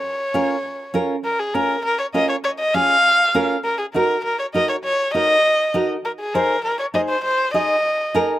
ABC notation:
X:1
M:4/4
L:1/8
Q:1/4=200
K:Bbm
V:1 name="Erhu"
d6- d z | B A B2 B d e d | d e f4- f z | B A B2 B d e d |
d2 e4- e z | B A B2 B d e c | c2 e4- e z |]
V:2 name="Nylon-string guitar"
z2 [DFB] z3 [DFB] z | z2 [DFB] z3 [DFB] z | z2 [DFA] z3 [DFB] z | z2 [EGB] z3 [EGB] z |
z2 [EGB] z3 [EGB] z | z2 [EAc] z3 [EAc] z | z2 [EAe] z3 [EAB] z |]